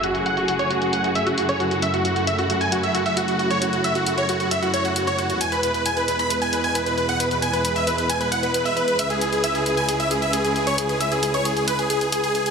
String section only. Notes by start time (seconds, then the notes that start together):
Already playing: F#2 C#3 A3 E4 G#4
1.82 F#4
5.41 E2 B2 G#3 B4
8.99 C#2 C#3 E4